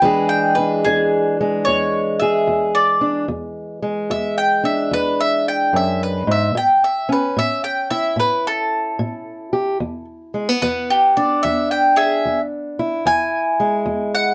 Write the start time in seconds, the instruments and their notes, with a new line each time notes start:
0.02 steel-string acoustic guitar E2 E3 G#3 D4 G#4, mandolin B4
0.29 mandolin G5
0.55 steel-string acoustic guitar D4, mandolin B4
0.85 steel-string acoustic guitar E2 D4, mandolin G#4
1.41 steel-string acoustic guitar G#3
1.65 steel-string acoustic guitar E2, mandolin C#5
2.20 steel-string acoustic guitar G#4, mandolin E5
2.47 steel-string acoustic guitar E2
2.75 mandolin D5
3.01 steel-string acoustic guitar D4
3.28 steel-string acoustic guitar E2
3.82 steel-string acoustic guitar G#3
4.10 steel-string acoustic guitar E2, mandolin E5
4.38 mandolin G5
4.64 steel-string acoustic guitar D4, mandolin E5
4.91 steel-string acoustic guitar E2, mandolin B4
5.20 mandolin E5
5.48 mandolin G5
5.73 steel-string acoustic guitar F#2, mandolin E5
6.03 mandolin B4
6.27 steel-string acoustic guitar G#2
6.31 mandolin E5
6.55 steel-string acoustic guitar A2, mandolin G5
6.84 mandolin E5
7.09 steel-string acoustic guitar C#4, mandolin B4
7.37 steel-string acoustic guitar A2, mandolin E5
7.64 mandolin G5
7.90 steel-string acoustic guitar E4, mandolin E5
8.16 steel-string acoustic guitar A2, mandolin B4
8.47 mandolin A4
8.99 steel-string acoustic guitar A2
9.53 steel-string acoustic guitar G4
9.80 steel-string acoustic guitar E2
10.34 steel-string acoustic guitar G#3
10.49 steel-string acoustic guitar B3
10.62 steel-string acoustic guitar E2, mandolin B4
10.90 mandolin G4
11.17 steel-string acoustic guitar D4, mandolin D5
11.43 steel-string acoustic guitar E2, mandolin E5
11.71 mandolin G5
11.96 mandolin G#4 E5
12.25 steel-string acoustic guitar E2
12.79 steel-string acoustic guitar E4
13.05 steel-string acoustic guitar E2, mandolin G#5
13.60 steel-string acoustic guitar G#3
13.86 steel-string acoustic guitar E2
14.15 mandolin F#5